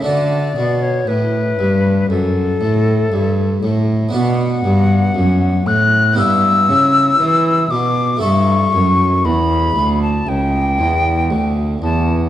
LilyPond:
<<
  \new Staff \with { instrumentName = "Flute" } { \time 4/4 \key d \major \tempo 4 = 59 d''8. cis''16 b'4 a'4.~ a'16 r16 | fis''4. fis'''8 e'''4. d'''8 | cis'''4 b''8. a''16 g''4. a''16 r16 | }
  \new Staff \with { instrumentName = "Harpsichord" } { \time 4/4 \key d \major <a d' fis'>1 | <b d' fis'>2 <b e' g'>2 | <a e' a'>1 | }
  \new Staff \with { instrumentName = "Harpsichord" } { \clef bass \time 4/4 \key d \major d8 b,8 a,8 g,8 fis,8 a,8 g,8 a,8 | b,8 g,8 fis,8 a,8 g,8 cis8 e8 b,8 | g,8 fis,8 e,8 d,8 cis,8 e,8 d,8 e,8 | }
  \new Staff \with { instrumentName = "Cello" } { \clef bass \time 4/4 \key d \major d8 b,8 a,8 g,8 fis,8 a,8 g,8 a,8 | b,8 g,8 fis,8 a,8 g,8 cis8 e8 b,8 | g,8 fis,8 e,8 d,8 cis,8 e,8 d,8 e,8 | }
>>